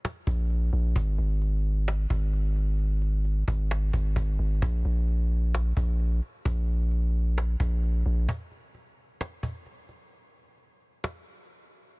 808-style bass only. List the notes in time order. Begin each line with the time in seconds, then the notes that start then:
0.27 A#1
0.73 A#1
0.96 G#1
1.18 G#1
2.10 G#1
3.48 G#1
3.93 G#1
4.16 G#1
4.39 G#1
4.62 A#1
4.85 A#1
5.77 A#1
6.45 A#1
7.60 A#1
8.06 A#1